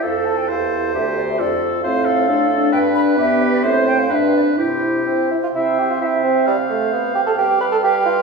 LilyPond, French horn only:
\new Staff \with { instrumentName = "French horn" } { \time 2/4 \key d \minor \tempo 4 = 132 f'4 g'4 | g'4 f'4 | \key c \major c'4 d'8 d'8~ | d'4 b4 |
c'4 d'4 | e'4. r8 | c2~ | c2 |
g2 | }